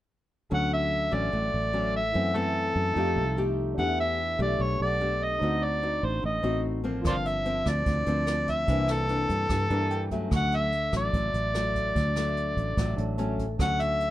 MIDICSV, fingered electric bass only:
0, 0, Header, 1, 2, 480
1, 0, Start_track
1, 0, Key_signature, 2, "major"
1, 0, Tempo, 408719
1, 601, Time_signature, 4, 2, 24, 8
1, 16565, End_track
2, 0, Start_track
2, 0, Title_t, "Fingered electric bass"
2, 0, Program_c, 0, 33
2, 608, Note_on_c, 0, 38, 90
2, 1277, Note_off_c, 0, 38, 0
2, 1321, Note_on_c, 0, 33, 87
2, 1544, Note_off_c, 0, 33, 0
2, 1565, Note_on_c, 0, 33, 86
2, 1786, Note_off_c, 0, 33, 0
2, 1810, Note_on_c, 0, 33, 86
2, 2478, Note_off_c, 0, 33, 0
2, 2526, Note_on_c, 0, 42, 87
2, 3196, Note_off_c, 0, 42, 0
2, 3237, Note_on_c, 0, 42, 86
2, 3462, Note_off_c, 0, 42, 0
2, 3477, Note_on_c, 0, 41, 89
2, 3713, Note_on_c, 0, 36, 85
2, 3731, Note_off_c, 0, 41, 0
2, 4389, Note_off_c, 0, 36, 0
2, 4437, Note_on_c, 0, 40, 87
2, 5111, Note_off_c, 0, 40, 0
2, 5154, Note_on_c, 0, 35, 84
2, 5380, Note_off_c, 0, 35, 0
2, 5397, Note_on_c, 0, 35, 88
2, 5621, Note_off_c, 0, 35, 0
2, 5637, Note_on_c, 0, 35, 79
2, 6311, Note_off_c, 0, 35, 0
2, 6359, Note_on_c, 0, 38, 85
2, 7032, Note_off_c, 0, 38, 0
2, 7082, Note_on_c, 0, 33, 87
2, 7304, Note_off_c, 0, 33, 0
2, 7326, Note_on_c, 0, 33, 90
2, 7546, Note_off_c, 0, 33, 0
2, 7558, Note_on_c, 0, 33, 80
2, 8232, Note_off_c, 0, 33, 0
2, 8281, Note_on_c, 0, 31, 83
2, 8953, Note_off_c, 0, 31, 0
2, 8995, Note_on_c, 0, 38, 79
2, 9220, Note_off_c, 0, 38, 0
2, 9233, Note_on_c, 0, 38, 80
2, 9459, Note_off_c, 0, 38, 0
2, 9477, Note_on_c, 0, 38, 77
2, 10151, Note_off_c, 0, 38, 0
2, 10194, Note_on_c, 0, 36, 78
2, 10870, Note_off_c, 0, 36, 0
2, 10916, Note_on_c, 0, 43, 87
2, 11141, Note_off_c, 0, 43, 0
2, 11157, Note_on_c, 0, 43, 86
2, 11382, Note_off_c, 0, 43, 0
2, 11397, Note_on_c, 0, 43, 85
2, 12072, Note_off_c, 0, 43, 0
2, 12113, Note_on_c, 0, 38, 83
2, 12791, Note_off_c, 0, 38, 0
2, 12834, Note_on_c, 0, 33, 92
2, 13061, Note_off_c, 0, 33, 0
2, 13074, Note_on_c, 0, 33, 86
2, 13301, Note_off_c, 0, 33, 0
2, 13317, Note_on_c, 0, 33, 88
2, 13993, Note_off_c, 0, 33, 0
2, 14043, Note_on_c, 0, 38, 82
2, 14717, Note_off_c, 0, 38, 0
2, 14760, Note_on_c, 0, 33, 92
2, 14985, Note_off_c, 0, 33, 0
2, 15000, Note_on_c, 0, 33, 91
2, 15225, Note_off_c, 0, 33, 0
2, 15243, Note_on_c, 0, 33, 84
2, 15917, Note_off_c, 0, 33, 0
2, 15962, Note_on_c, 0, 38, 83
2, 16565, Note_off_c, 0, 38, 0
2, 16565, End_track
0, 0, End_of_file